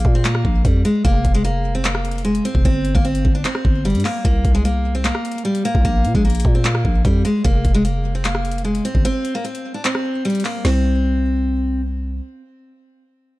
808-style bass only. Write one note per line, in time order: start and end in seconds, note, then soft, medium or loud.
0.05 0.43 A#2 loud
0.45 0.64 A#1 loud
0.65 0.84 F2 loud
1.05 1.24 F1 loud
1.25 2.41 F1 loud
2.55 2.64 F1 loud
2.65 2.94 G1 loud
2.95 3.24 G1 loud
3.25 3.44 G1 loud
3.65 3.96 G1 loud
3.95 4.04 G2 loud
4.25 4.44 C2 loud
4.45 5.12 C2 loud
5.75 5.84 C2 loud
5.85 6.06 A#1 loud
6.05 6.14 A#2 loud
6.15 6.44 A#1 loud
6.45 6.83 A#2 loud
6.85 7.04 A#1 loud
7.05 7.24 F2 loud
7.45 7.64 F1 loud
7.65 8.81 F1 loud
8.95 9.04 G1 loud
10.65 12.21 C2 loud